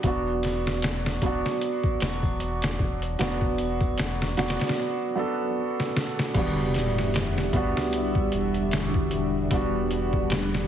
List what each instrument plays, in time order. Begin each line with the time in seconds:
0.03 analog synth bass E1, felt piano F#3 B3 D4, kick, closed hi-hat, shaker
0.07 felt piano F#4
0.27 shaker
0.43 snare, closed hi-hat, triangle
0.66 snare, shaker
0.82 snare, closed hi-hat, shaker
1.05 snare, shaker
1.22 analog synth bass E1, felt piano F#3 B3 D4, kick, closed hi-hat
1.26 felt piano F#4
1.45 snare, shaker
1.61 closed hi-hat, shaker
1.84 kick, shaker
2.00 analog synth bass E1, snare, closed hi-hat, triangle
2.23 kick, shaker
2.40 closed hi-hat, shaker
2.62 snare, closed hi-hat, shaker
2.79 analog synth bass E1, kick
3.02 closed hi-hat, shaker
3.18 analog synth bass E1, felt piano F#3 B3 D4 F#4, snare, closed hi-hat, shaker
3.41 kick, shaker
3.58 closed hi-hat, triangle
3.80 kick, shaker
3.97 snare, closed hi-hat, shaker
4.20 snare, shaker
4.37 analog synth bass E1, felt piano F#3 B3 D4 F#4, snare, closed hi-hat
4.48 snare, closed hi-hat
4.59 snare, closed hi-hat, shaker
4.68 snare, closed hi-hat
5.15 felt piano F#3 B3 D4 A4
5.80 snare
5.97 snare
6.19 snare
6.34 analog synth bass E1, string machine G3 D4 E5, felt piano G3 B3 D4 F#4, kick, closed hi-hat, crash, sub drop
6.74 snare, closed hi-hat
6.98 snare
7.14 snare, closed hi-hat
7.38 snare
7.53 analog synth bass G1, felt piano G3 B3 D4 F#4, kick, closed hi-hat
7.77 snare
7.93 closed hi-hat
8.15 kick
8.32 analog synth bass E1, closed hi-hat
8.54 closed hi-hat
8.71 snare, closed hi-hat
8.94 kick
9.11 analog synth bass E1, closed hi-hat
9.51 analog synth bass E1, felt piano G3 B3 D4 F#4, string machine F#5, kick, closed hi-hat
9.91 closed hi-hat
10.13 kick
10.30 snare, closed hi-hat
10.54 snare